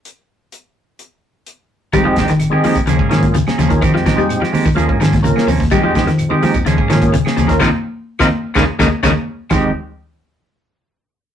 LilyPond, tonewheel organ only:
\new Staff \with { instrumentName = "Tonewheel organ" } { \time 4/4 \key f \minor \tempo 4 = 127 r1 | r16 <aes c' ees' g'>8 r8 <aes c' ees' aes'>8 r8. <bes des' f' aes'>8 r8. <bes des' f' aes'>16 | r8. <aes c' ees' g'>8 r8. <bes des' f' aes'>8 r8 <bes des' f' bes'>8 r8 | r16 <aes c' ees' g'>8 r8 <aes c' ees' g'>8 r8. <bes des' f' aes'>8 r8. <bes des' f' bes'>16 |
<c' ees' f'>16 r4 <c' ees' f'>16 r8 <bes des' ees'>16 r16 <bes des' ees'>16 r16 <bes des' ees'>16 r8. | <aes c' ees' g'>8 r2. r8 | }